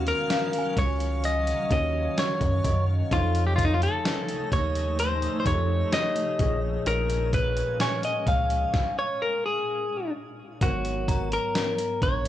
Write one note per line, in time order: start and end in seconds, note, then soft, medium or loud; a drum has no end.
0.00 0.12 D#2 loud
0.00 6.36 C#3 medium
0.00 0.90 D#3 medium
0.00 3.07 F#3 medium
0.00 0.91 C#4 medium
0.00 0.91 F#4 medium
0.00 0.91 F5 medium
0.00 3.07 F5 medium
0.07 0.80 A#4 medium
0.07 closed hi-hat medium
0.30 1.73 F5 medium
0.30 snare loud
0.30 closed hi-hat medium
0.53 closed hi-hat medium
0.59 1.99 G#5 medium
0.77 1.53 C#2 loud
0.77 1.25 C#5 medium
0.77 kick loud
0.77 closed hi-hat medium
1.00 closed hi-hat medium
1.24 1.71 D#5 loud
1.24 closed hi-hat medium
1.47 closed hi-hat medium
1.70 2.09 D#2 loud
1.70 2.86 D#3 medium
1.70 2.87 C#4 medium
1.70 2.87 F#4 medium
1.70 2.87 C#5 medium
1.70 2.19 D#5 loud
1.70 kick loud
1.70 closed hi-hat medium
2.18 2.85 C#5 loud
2.18 snare loud
2.18 closed hi-hat medium
2.41 2.60 F#2 medium
2.41 kick loud
2.41 closed hi-hat medium
2.64 3.03 F#2 medium
2.64 3.54 D#5 medium
2.64 kick medium
2.64 closed hi-hat medium
3.11 3.87 F2 loud
3.11 4.65 F3 medium
3.11 6.36 A3 medium
3.11 4.66 D#4 medium
3.11 6.36 D#4 medium
3.11 3.44 F4 medium
3.11 4.66 A4 medium
3.11 4.66 C#5 medium
3.11 kick loud
3.11 closed hi-hat medium
3.35 closed hi-hat medium
3.47 3.55 G4 medium
3.56 3.64 F4 medium
3.56 kick loud
3.56 closed hi-hat medium
3.65 3.73 D#4 medium
3.74 3.82 F4 medium
3.82 4.49 A4 medium
3.82 closed hi-hat medium
4.05 snare loud
4.05 closed hi-hat medium
4.29 closed hi-hat medium
4.52 5.28 D#2 medium
4.52 4.99 C#5 loud
4.52 kick loud
4.52 closed hi-hat medium
4.75 closed hi-hat medium
4.99 5.39 C5 loud
4.99 closed hi-hat medium
5.22 closed hi-hat medium
5.40 5.46 C5 medium
5.46 5.84 F2 medium
5.46 6.39 F3 medium
5.46 6.40 D#4 medium
5.46 5.53 G4 medium
5.46 5.90 C#5 loud
5.46 6.40 C#5 medium
5.46 kick loud
5.46 closed hi-hat medium
5.92 6.82 C#5 medium
5.92 6.59 D#5 loud
5.92 snare loud
5.92 closed hi-hat medium
6.16 closed hi-hat medium
6.39 6.77 A#1 loud
6.39 7.94 A#2 medium
6.39 8.72 A#2 medium
6.39 7.94 F3 medium
6.39 8.72 G#3 medium
6.39 8.72 C#4 medium
6.39 7.94 G#4 medium
6.39 7.95 C#5 medium
6.39 kick loud
6.39 closed hi-hat medium
6.86 7.62 A#1 loud
6.86 7.31 A#4 loud
6.86 closed hi-hat medium
7.10 closed hi-hat medium
7.33 7.77 B4 loud
7.33 kick loud
7.33 closed hi-hat medium
7.57 closed hi-hat medium
7.80 8.04 C#5 loud
7.80 9.23 G#5 medium
7.80 snare loud
7.80 closed hi-hat medium
8.03 8.28 D#5 loud
8.03 closed hi-hat medium
8.27 8.65 C#2 medium
8.27 8.98 F5 loud
8.27 kick loud
8.27 closed hi-hat medium
8.50 closed hi-hat medium
8.74 kick loud
8.74 snare medium
8.99 9.22 C#5 loud
9.22 9.45 A#4 loud
9.46 10.11 G#4 medium
10.61 11.37 G#1 loud
10.61 12.15 G#2 medium
10.61 12.16 F#3 medium
10.61 12.16 B3 medium
10.61 11.28 F#4 medium
10.61 12.16 A#4 medium
10.61 10.69 C5 medium
10.61 kick loud
10.61 closed hi-hat medium
10.70 12.20 C#5 medium
10.85 closed hi-hat medium
11.08 12.28 A#5 medium
11.08 kick loud
11.08 closed hi-hat medium
11.32 12.03 A#4 medium
11.32 closed hi-hat medium
11.55 snare loud
11.55 closed hi-hat medium
11.78 closed hi-hat medium
12.02 12.28 A#1 medium
12.02 12.28 C#5 medium
12.02 kick loud
12.02 closed hi-hat medium